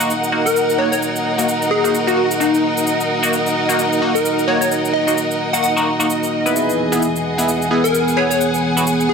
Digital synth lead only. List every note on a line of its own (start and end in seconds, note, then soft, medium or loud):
0.46 0.77 A#4 medium
0.78 0.87 C#5 medium
0.92 0.98 C#5 medium
1.71 1.79 G#4 medium
1.84 1.90 G#4 medium
2.07 2.13 F#4 medium
2.17 2.25 F#4 medium
2.40 2.76 D#4 medium
4.15 4.46 A#4 medium
4.48 4.56 C#5 medium
4.61 4.67 C#5 medium
4.94 5.02 D#5 medium
5.07 5.13 D#5 medium
5.53 5.59 F#5 medium
5.63 5.71 F#5 medium
7.84 8.15 A#4 medium
8.17 8.25 C#5 medium
8.30 8.36 C#5 medium
9.09 9.14 G#4 medium